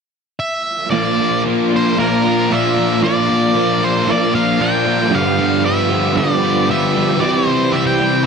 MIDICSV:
0, 0, Header, 1, 6, 480
1, 0, Start_track
1, 0, Tempo, 524017
1, 862, Time_signature, 4, 2, 24, 8
1, 7570, End_track
2, 0, Start_track
2, 0, Title_t, "Analog synth pad"
2, 0, Program_c, 0, 89
2, 859, Note_on_c, 0, 65, 82
2, 859, Note_on_c, 0, 74, 75
2, 861, Note_on_c, 0, 82, 73
2, 864, Note_on_c, 0, 86, 86
2, 2764, Note_on_c, 0, 88, 87
2, 2766, Note_off_c, 0, 86, 0
2, 4667, Note_off_c, 0, 65, 0
2, 4667, Note_off_c, 0, 74, 0
2, 4668, Note_off_c, 0, 82, 0
2, 4676, Note_off_c, 0, 88, 0
2, 4714, Note_on_c, 0, 86, 86
2, 4720, Note_on_c, 0, 79, 74
2, 4722, Note_on_c, 0, 71, 66
2, 4727, Note_on_c, 0, 65, 81
2, 6609, Note_off_c, 0, 86, 0
2, 6613, Note_off_c, 0, 71, 0
2, 6616, Note_off_c, 0, 65, 0
2, 6628, Note_on_c, 0, 64, 75
2, 6637, Note_on_c, 0, 72, 69
2, 6641, Note_on_c, 0, 84, 91
2, 7570, Note_off_c, 0, 64, 0
2, 7570, Note_off_c, 0, 72, 0
2, 7570, Note_off_c, 0, 79, 0
2, 7570, Note_off_c, 0, 84, 0
2, 7570, End_track
3, 0, Start_track
3, 0, Title_t, "Lead electric guitar"
3, 0, Program_c, 1, 29
3, 363, Note_on_c, 1, 76, 119
3, 825, Note_off_c, 1, 76, 0
3, 829, Note_on_c, 1, 74, 101
3, 1291, Note_off_c, 1, 74, 0
3, 1614, Note_on_c, 1, 72, 77
3, 1826, Note_off_c, 1, 72, 0
3, 1829, Note_on_c, 1, 70, 97
3, 2309, Note_on_c, 1, 76, 106
3, 2321, Note_off_c, 1, 70, 0
3, 2777, Note_off_c, 1, 76, 0
3, 2781, Note_on_c, 1, 74, 110
3, 3521, Note_on_c, 1, 72, 94
3, 3525, Note_off_c, 1, 74, 0
3, 3758, Note_on_c, 1, 74, 104
3, 3760, Note_off_c, 1, 72, 0
3, 3983, Note_off_c, 1, 74, 0
3, 3987, Note_on_c, 1, 77, 108
3, 4229, Note_on_c, 1, 79, 120
3, 4233, Note_off_c, 1, 77, 0
3, 4717, Note_on_c, 1, 77, 109
3, 4721, Note_off_c, 1, 79, 0
3, 5177, Note_off_c, 1, 77, 0
3, 5181, Note_on_c, 1, 76, 101
3, 5650, Note_off_c, 1, 76, 0
3, 5654, Note_on_c, 1, 74, 96
3, 6141, Note_off_c, 1, 74, 0
3, 6144, Note_on_c, 1, 76, 102
3, 6597, Note_on_c, 1, 74, 91
3, 6638, Note_off_c, 1, 76, 0
3, 6717, Note_off_c, 1, 74, 0
3, 6717, Note_on_c, 1, 72, 99
3, 7073, Note_on_c, 1, 76, 93
3, 7101, Note_off_c, 1, 72, 0
3, 7198, Note_off_c, 1, 76, 0
3, 7207, Note_on_c, 1, 79, 84
3, 7553, Note_off_c, 1, 79, 0
3, 7570, End_track
4, 0, Start_track
4, 0, Title_t, "Clean electric guitar"
4, 0, Program_c, 2, 27
4, 848, Note_on_c, 2, 46, 90
4, 861, Note_on_c, 2, 53, 104
4, 863, Note_on_c, 2, 58, 93
4, 872, Note_on_c, 2, 62, 100
4, 884, Note_on_c, 2, 65, 97
4, 1088, Note_off_c, 2, 65, 0
4, 1091, Note_on_c, 2, 65, 63
4, 1107, Note_off_c, 2, 62, 0
4, 1111, Note_on_c, 2, 62, 58
4, 1118, Note_off_c, 2, 58, 0
4, 1122, Note_on_c, 2, 58, 58
4, 1317, Note_off_c, 2, 53, 0
4, 1321, Note_on_c, 2, 53, 69
4, 1328, Note_off_c, 2, 58, 0
4, 1332, Note_on_c, 2, 58, 68
4, 1340, Note_off_c, 2, 62, 0
4, 1344, Note_on_c, 2, 62, 67
4, 1347, Note_off_c, 2, 65, 0
4, 1351, Note_on_c, 2, 65, 74
4, 1555, Note_off_c, 2, 65, 0
4, 1559, Note_on_c, 2, 65, 73
4, 1570, Note_off_c, 2, 62, 0
4, 1574, Note_on_c, 2, 62, 65
4, 1585, Note_off_c, 2, 58, 0
4, 1588, Note_on_c, 2, 58, 55
4, 1802, Note_off_c, 2, 46, 0
4, 1806, Note_on_c, 2, 46, 74
4, 1808, Note_off_c, 2, 58, 0
4, 1812, Note_off_c, 2, 53, 0
4, 1816, Note_on_c, 2, 53, 84
4, 1819, Note_on_c, 2, 58, 89
4, 1825, Note_off_c, 2, 62, 0
4, 1828, Note_on_c, 2, 62, 95
4, 1829, Note_off_c, 2, 65, 0
4, 1833, Note_on_c, 2, 65, 97
4, 2050, Note_off_c, 2, 65, 0
4, 2053, Note_on_c, 2, 65, 80
4, 2063, Note_off_c, 2, 62, 0
4, 2066, Note_on_c, 2, 62, 63
4, 2068, Note_off_c, 2, 58, 0
4, 2079, Note_on_c, 2, 58, 59
4, 2287, Note_off_c, 2, 53, 0
4, 2290, Note_on_c, 2, 53, 72
4, 2293, Note_off_c, 2, 58, 0
4, 2295, Note_off_c, 2, 46, 0
4, 2304, Note_on_c, 2, 58, 71
4, 2310, Note_off_c, 2, 62, 0
4, 2313, Note_on_c, 2, 62, 85
4, 2318, Note_off_c, 2, 65, 0
4, 2321, Note_on_c, 2, 65, 77
4, 2529, Note_off_c, 2, 65, 0
4, 2533, Note_on_c, 2, 65, 68
4, 2543, Note_off_c, 2, 62, 0
4, 2546, Note_on_c, 2, 62, 74
4, 2550, Note_off_c, 2, 58, 0
4, 2561, Note_on_c, 2, 58, 59
4, 2773, Note_on_c, 2, 46, 99
4, 2775, Note_off_c, 2, 58, 0
4, 2780, Note_off_c, 2, 53, 0
4, 2784, Note_on_c, 2, 53, 88
4, 2786, Note_on_c, 2, 58, 98
4, 2794, Note_off_c, 2, 62, 0
4, 2797, Note_on_c, 2, 62, 97
4, 2800, Note_off_c, 2, 65, 0
4, 2803, Note_on_c, 2, 65, 113
4, 3009, Note_off_c, 2, 65, 0
4, 3012, Note_on_c, 2, 65, 71
4, 3029, Note_off_c, 2, 58, 0
4, 3029, Note_off_c, 2, 62, 0
4, 3033, Note_on_c, 2, 62, 63
4, 3040, Note_on_c, 2, 58, 57
4, 3256, Note_off_c, 2, 58, 0
4, 3259, Note_off_c, 2, 46, 0
4, 3259, Note_off_c, 2, 53, 0
4, 3263, Note_on_c, 2, 53, 62
4, 3267, Note_on_c, 2, 58, 71
4, 3270, Note_off_c, 2, 62, 0
4, 3274, Note_on_c, 2, 62, 70
4, 3283, Note_off_c, 2, 65, 0
4, 3287, Note_on_c, 2, 65, 71
4, 3499, Note_off_c, 2, 65, 0
4, 3503, Note_on_c, 2, 65, 69
4, 3518, Note_off_c, 2, 62, 0
4, 3521, Note_off_c, 2, 58, 0
4, 3521, Note_on_c, 2, 62, 59
4, 3532, Note_on_c, 2, 58, 58
4, 3730, Note_on_c, 2, 46, 93
4, 3736, Note_off_c, 2, 58, 0
4, 3738, Note_off_c, 2, 53, 0
4, 3741, Note_on_c, 2, 53, 90
4, 3746, Note_off_c, 2, 62, 0
4, 3747, Note_on_c, 2, 58, 100
4, 3752, Note_off_c, 2, 65, 0
4, 3757, Note_on_c, 2, 62, 97
4, 3763, Note_on_c, 2, 65, 103
4, 3967, Note_off_c, 2, 65, 0
4, 3978, Note_on_c, 2, 65, 79
4, 3981, Note_off_c, 2, 62, 0
4, 3992, Note_on_c, 2, 62, 70
4, 3994, Note_off_c, 2, 58, 0
4, 4005, Note_on_c, 2, 58, 66
4, 4203, Note_off_c, 2, 53, 0
4, 4214, Note_on_c, 2, 53, 68
4, 4218, Note_off_c, 2, 46, 0
4, 4220, Note_off_c, 2, 58, 0
4, 4227, Note_off_c, 2, 62, 0
4, 4231, Note_on_c, 2, 58, 75
4, 4237, Note_off_c, 2, 65, 0
4, 4238, Note_on_c, 2, 62, 83
4, 4248, Note_on_c, 2, 65, 91
4, 4449, Note_off_c, 2, 65, 0
4, 4460, Note_on_c, 2, 65, 76
4, 4463, Note_off_c, 2, 62, 0
4, 4472, Note_off_c, 2, 58, 0
4, 4474, Note_on_c, 2, 62, 74
4, 4483, Note_on_c, 2, 58, 62
4, 4678, Note_off_c, 2, 53, 0
4, 4679, Note_on_c, 2, 43, 98
4, 4685, Note_on_c, 2, 50, 99
4, 4688, Note_off_c, 2, 65, 0
4, 4689, Note_on_c, 2, 53, 94
4, 4690, Note_off_c, 2, 58, 0
4, 4694, Note_on_c, 2, 55, 90
4, 4695, Note_off_c, 2, 62, 0
4, 4704, Note_on_c, 2, 59, 102
4, 4705, Note_on_c, 2, 67, 93
4, 4907, Note_off_c, 2, 67, 0
4, 4911, Note_on_c, 2, 67, 76
4, 4916, Note_off_c, 2, 59, 0
4, 4927, Note_on_c, 2, 59, 70
4, 4930, Note_off_c, 2, 55, 0
4, 4933, Note_off_c, 2, 53, 0
4, 4934, Note_on_c, 2, 55, 59
4, 4944, Note_on_c, 2, 53, 61
4, 5147, Note_off_c, 2, 53, 0
4, 5158, Note_on_c, 2, 53, 67
4, 5162, Note_off_c, 2, 59, 0
4, 5164, Note_off_c, 2, 55, 0
4, 5167, Note_on_c, 2, 55, 74
4, 5172, Note_off_c, 2, 43, 0
4, 5173, Note_on_c, 2, 59, 78
4, 5175, Note_off_c, 2, 50, 0
4, 5185, Note_off_c, 2, 67, 0
4, 5189, Note_on_c, 2, 67, 77
4, 5394, Note_off_c, 2, 67, 0
4, 5398, Note_on_c, 2, 67, 75
4, 5401, Note_off_c, 2, 59, 0
4, 5412, Note_on_c, 2, 59, 73
4, 5420, Note_off_c, 2, 53, 0
4, 5421, Note_off_c, 2, 55, 0
4, 5424, Note_on_c, 2, 55, 64
4, 5431, Note_on_c, 2, 53, 67
4, 5637, Note_on_c, 2, 43, 89
4, 5641, Note_off_c, 2, 53, 0
4, 5647, Note_off_c, 2, 55, 0
4, 5647, Note_on_c, 2, 50, 97
4, 5652, Note_on_c, 2, 53, 84
4, 5656, Note_off_c, 2, 59, 0
4, 5656, Note_off_c, 2, 67, 0
4, 5658, Note_on_c, 2, 55, 84
4, 5667, Note_on_c, 2, 59, 96
4, 5667, Note_on_c, 2, 67, 88
4, 5869, Note_off_c, 2, 67, 0
4, 5879, Note_off_c, 2, 59, 0
4, 5880, Note_on_c, 2, 67, 82
4, 5885, Note_off_c, 2, 55, 0
4, 5890, Note_on_c, 2, 59, 76
4, 5891, Note_off_c, 2, 53, 0
4, 5896, Note_on_c, 2, 55, 71
4, 5902, Note_on_c, 2, 53, 62
4, 6106, Note_off_c, 2, 53, 0
4, 6117, Note_off_c, 2, 55, 0
4, 6117, Note_on_c, 2, 53, 66
4, 6128, Note_on_c, 2, 55, 68
4, 6130, Note_off_c, 2, 59, 0
4, 6131, Note_off_c, 2, 43, 0
4, 6135, Note_off_c, 2, 50, 0
4, 6138, Note_off_c, 2, 67, 0
4, 6141, Note_on_c, 2, 59, 78
4, 6149, Note_on_c, 2, 67, 77
4, 6352, Note_off_c, 2, 67, 0
4, 6363, Note_on_c, 2, 67, 78
4, 6364, Note_off_c, 2, 59, 0
4, 6370, Note_off_c, 2, 55, 0
4, 6375, Note_on_c, 2, 59, 67
4, 6377, Note_off_c, 2, 53, 0
4, 6381, Note_on_c, 2, 55, 63
4, 6388, Note_on_c, 2, 53, 65
4, 6596, Note_on_c, 2, 48, 87
4, 6599, Note_off_c, 2, 67, 0
4, 6601, Note_off_c, 2, 53, 0
4, 6602, Note_off_c, 2, 55, 0
4, 6605, Note_off_c, 2, 59, 0
4, 6605, Note_on_c, 2, 52, 105
4, 6613, Note_on_c, 2, 55, 90
4, 6617, Note_on_c, 2, 60, 100
4, 6629, Note_on_c, 2, 67, 99
4, 6840, Note_off_c, 2, 67, 0
4, 6851, Note_on_c, 2, 67, 75
4, 6861, Note_off_c, 2, 60, 0
4, 6872, Note_on_c, 2, 60, 64
4, 6873, Note_off_c, 2, 55, 0
4, 6884, Note_on_c, 2, 55, 56
4, 7078, Note_off_c, 2, 52, 0
4, 7083, Note_off_c, 2, 55, 0
4, 7089, Note_off_c, 2, 48, 0
4, 7089, Note_on_c, 2, 52, 57
4, 7094, Note_off_c, 2, 60, 0
4, 7094, Note_on_c, 2, 55, 66
4, 7105, Note_on_c, 2, 60, 70
4, 7108, Note_off_c, 2, 67, 0
4, 7119, Note_on_c, 2, 67, 74
4, 7316, Note_off_c, 2, 67, 0
4, 7327, Note_on_c, 2, 67, 73
4, 7332, Note_off_c, 2, 60, 0
4, 7341, Note_off_c, 2, 55, 0
4, 7343, Note_on_c, 2, 60, 60
4, 7352, Note_on_c, 2, 55, 54
4, 7560, Note_off_c, 2, 52, 0
4, 7566, Note_off_c, 2, 55, 0
4, 7570, Note_off_c, 2, 60, 0
4, 7570, Note_off_c, 2, 67, 0
4, 7570, End_track
5, 0, Start_track
5, 0, Title_t, "Distorted electric guitar"
5, 0, Program_c, 3, 30
5, 1117, Note_on_c, 3, 53, 53
5, 1335, Note_on_c, 3, 46, 69
5, 1341, Note_off_c, 3, 53, 0
5, 1598, Note_on_c, 3, 53, 60
5, 2290, Note_off_c, 3, 46, 0
5, 2293, Note_on_c, 3, 46, 74
5, 2301, Note_off_c, 3, 53, 0
5, 2549, Note_on_c, 3, 53, 64
5, 2762, Note_off_c, 3, 46, 0
5, 2780, Note_off_c, 3, 53, 0
5, 3037, Note_on_c, 3, 53, 61
5, 3244, Note_on_c, 3, 46, 79
5, 3249, Note_off_c, 3, 53, 0
5, 3493, Note_on_c, 3, 58, 80
5, 3515, Note_on_c, 3, 53, 67
5, 3734, Note_off_c, 3, 46, 0
5, 4211, Note_off_c, 3, 53, 0
5, 4213, Note_on_c, 3, 46, 73
5, 4223, Note_off_c, 3, 58, 0
5, 4469, Note_on_c, 3, 53, 67
5, 4684, Note_off_c, 3, 46, 0
5, 4693, Note_off_c, 3, 53, 0
5, 4948, Note_on_c, 3, 50, 58
5, 5182, Note_off_c, 3, 50, 0
5, 5184, Note_on_c, 3, 43, 67
5, 5193, Note_on_c, 3, 50, 73
5, 5426, Note_off_c, 3, 50, 0
5, 5437, Note_on_c, 3, 50, 61
5, 5664, Note_off_c, 3, 43, 0
5, 6126, Note_on_c, 3, 43, 72
5, 6132, Note_off_c, 3, 50, 0
5, 6143, Note_on_c, 3, 50, 70
5, 6383, Note_off_c, 3, 50, 0
5, 6394, Note_on_c, 3, 50, 61
5, 6600, Note_off_c, 3, 43, 0
5, 6612, Note_off_c, 3, 50, 0
5, 7089, Note_on_c, 3, 48, 74
5, 7570, Note_off_c, 3, 48, 0
5, 7570, End_track
6, 0, Start_track
6, 0, Title_t, "Overdriven electric guitar"
6, 0, Program_c, 4, 29
6, 2074, Note_on_c, 4, 53, 75
6, 2076, Note_on_c, 4, 46, 60
6, 2288, Note_off_c, 4, 46, 0
6, 2297, Note_off_c, 4, 53, 0
6, 2299, Note_on_c, 4, 46, 90
6, 2763, Note_off_c, 4, 46, 0
6, 3996, Note_on_c, 4, 53, 75
6, 3999, Note_on_c, 4, 46, 63
6, 4203, Note_off_c, 4, 46, 0
6, 4210, Note_off_c, 4, 53, 0
6, 4214, Note_on_c, 4, 46, 84
6, 4685, Note_off_c, 4, 46, 0
6, 4714, Note_on_c, 4, 62, 98
6, 5886, Note_off_c, 4, 62, 0
6, 5897, Note_on_c, 4, 62, 86
6, 5912, Note_on_c, 4, 50, 78
6, 5920, Note_on_c, 4, 43, 78
6, 6126, Note_off_c, 4, 62, 0
6, 6130, Note_off_c, 4, 50, 0
6, 6132, Note_off_c, 4, 43, 0
6, 6141, Note_on_c, 4, 50, 79
6, 6143, Note_on_c, 4, 43, 80
6, 6158, Note_on_c, 4, 62, 82
6, 6608, Note_off_c, 4, 43, 0
6, 6608, Note_off_c, 4, 50, 0
6, 6616, Note_off_c, 4, 62, 0
6, 6635, Note_on_c, 4, 64, 98
6, 7570, Note_off_c, 4, 64, 0
6, 7570, End_track
0, 0, End_of_file